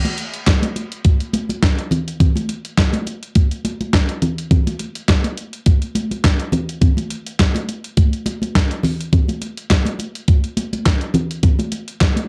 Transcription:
0.05 closed hi-hat soft
0.05 high conga medium
0.18 closed hi-hat medium
0.34 closed hi-hat medium
0.47 kick loud
0.47 snare loud
0.47 clap medium
0.47 closed hi-hat medium
0.62 closed hi-hat medium
0.62 high conga medium
0.76 closed hi-hat medium
0.76 muted conga soft
0.92 closed hi-hat soft
1.05 kick loud
1.05 closed hi-hat medium
1.05 high conga medium
1.21 closed hi-hat soft
1.33 closed hi-hat medium
1.33 muted conga soft
1.33 high conga medium
1.49 closed hi-hat soft
1.49 high conga medium
1.63 kick loud
1.63 snare loud
1.63 clap medium
1.63 closed hi-hat loud
1.63 muted conga soft
1.79 closed hi-hat soft
1.91 closed hi-hat medium
1.91 low conga medium
2.08 closed hi-hat medium
2.20 kick loud
2.20 closed hi-hat medium
2.20 muted conga soft
2.20 low conga medium
2.36 closed hi-hat soft
2.36 high conga medium
2.49 closed hi-hat medium
2.49 muted conga soft
2.65 closed hi-hat soft
2.78 kick loud
2.78 snare loud
2.78 clap medium
2.78 closed hi-hat medium
2.78 muted conga soft
2.93 closed hi-hat medium
2.93 high conga medium
3.07 closed hi-hat medium
3.07 muted conga soft
3.23 closed hi-hat medium
3.35 kick loud
3.35 closed hi-hat medium
3.35 muted conga soft
3.35 high conga medium
3.51 closed hi-hat soft
3.65 closed hi-hat medium
3.65 high conga medium
3.81 closed hi-hat soft
3.81 high conga medium
3.93 kick loud
3.93 snare loud
3.93 clap loud
3.93 closed hi-hat medium
4.09 closed hi-hat soft
4.22 closed hi-hat medium
4.22 low conga medium
4.38 closed hi-hat medium
4.51 kick loud
4.51 closed hi-hat medium
4.51 low conga medium
4.67 closed hi-hat soft
4.67 high conga medium
4.79 closed hi-hat medium
4.79 muted conga soft
4.95 closed hi-hat medium
5.08 kick loud
5.08 snare loud
5.08 clap medium
5.08 closed hi-hat medium
5.24 closed hi-hat medium
5.24 high conga medium
5.38 closed hi-hat medium
5.53 closed hi-hat soft
5.66 kick loud
5.66 closed hi-hat medium
5.66 muted conga soft
5.66 high conga medium
5.82 closed hi-hat soft
5.95 closed hi-hat medium
5.95 muted conga soft
5.95 high conga medium
6.11 closed hi-hat soft
6.11 high conga medium
6.24 kick loud
6.24 snare loud
6.24 clap loud
6.24 closed hi-hat medium
6.24 muted conga soft
6.40 closed hi-hat soft
6.52 closed hi-hat medium
6.52 muted conga soft
6.52 low conga medium
6.69 closed hi-hat soft
6.81 kick loud
6.81 closed hi-hat medium
6.81 low conga medium
6.97 closed hi-hat soft
6.97 high conga medium
7.10 closed hi-hat medium
7.26 closed hi-hat medium
7.39 kick loud
7.39 snare loud
7.39 clap medium
7.39 closed hi-hat medium
7.55 closed hi-hat medium
7.55 high conga medium
7.68 closed hi-hat medium
7.68 muted conga soft
7.84 closed hi-hat soft
7.97 kick loud
7.97 closed hi-hat medium
7.97 muted conga soft
7.97 high conga medium
8.13 closed hi-hat soft
8.26 closed hi-hat medium
8.26 muted conga soft
8.26 high conga medium
8.42 closed hi-hat soft
8.42 high conga medium
8.55 kick loud
8.55 snare loud
8.55 clap medium
8.55 closed hi-hat medium
8.71 closed hi-hat soft
8.83 open hi-hat medium
8.83 low conga medium
9.01 closed hi-hat medium
9.13 kick loud
9.13 closed hi-hat medium
9.13 muted conga soft
9.13 low conga medium
9.28 closed hi-hat soft
9.28 high conga medium
9.41 closed hi-hat medium
9.41 muted conga soft
9.57 closed hi-hat medium
9.70 kick loud
9.70 snare loud
9.70 clap medium
9.70 closed hi-hat medium
9.70 muted conga soft
9.85 closed hi-hat medium
9.85 high conga medium
9.99 closed hi-hat medium
9.99 muted conga soft
10.15 closed hi-hat soft
10.28 kick loud
10.28 closed hi-hat medium
10.28 high conga medium
10.44 closed hi-hat soft
10.57 closed hi-hat medium
10.57 high conga medium
10.73 closed hi-hat soft
10.73 high conga medium
10.86 kick loud
10.86 snare loud
10.86 clap loud
10.86 closed hi-hat medium
10.86 muted conga soft
11.01 closed hi-hat soft
11.14 closed hi-hat medium
11.14 low conga medium
11.31 closed hi-hat medium
11.43 kick loud
11.43 closed hi-hat medium
11.43 muted conga soft
11.43 low conga medium
11.59 closed hi-hat soft
11.59 high conga medium
11.72 closed hi-hat medium
11.72 muted conga soft
11.88 closed hi-hat medium
12.00 kick loud
12.00 snare loud
12.00 clap medium
12.00 closed hi-hat medium
12.00 muted conga soft
12.16 closed hi-hat medium
12.16 high conga medium

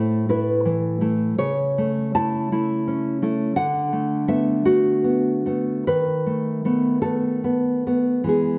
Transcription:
0.00 1.32 A2 medium
0.00 0.28 A3 soft
0.00 0.29 E4 soft
0.00 0.25 C5 medium
0.29 1.00 A3 soft
0.29 1.00 E4 medium
0.29 0.63 B4 medium
0.65 1.37 E3 soft
1.01 1.34 A3 soft
1.01 1.34 E4 medium
1.38 3.54 C#3 medium
1.38 2.14 C#5 medium
1.78 2.15 A3 medium
2.15 2.51 A3 soft
2.15 2.51 E4 medium
2.15 3.52 A5 loud
2.52 3.21 A3 soft
2.52 3.22 E4 medium
2.87 3.56 C#4 soft
3.22 3.53 A3 soft
3.22 3.53 E4 medium
3.56 5.83 D3 medium
3.56 4.25 F#5 medium
3.93 4.27 A3 soft
4.28 4.65 A3 soft
4.28 4.65 B3 medium
4.28 4.63 E5 medium
4.65 5.45 A3 medium
4.65 5.03 B3 medium
4.65 5.83 F#4 medium
5.04 5.45 B3 soft
5.46 5.83 A3 soft
5.46 5.83 B3 medium
5.87 8.25 D#3 medium
5.87 7.00 B4 medium
6.26 6.64 A3 soft
6.65 7.01 A3 soft
6.65 7.02 B3 soft
7.02 7.85 A3 soft
7.02 7.43 B3 soft
7.02 8.24 A4 medium
7.44 7.86 B3 soft
7.87 8.25 A3 soft
7.87 8.25 B3 soft
8.24 8.59 E3 soft
8.24 8.59 G#3 soft
8.24 8.59 B3 soft
8.28 8.59 G#4 medium

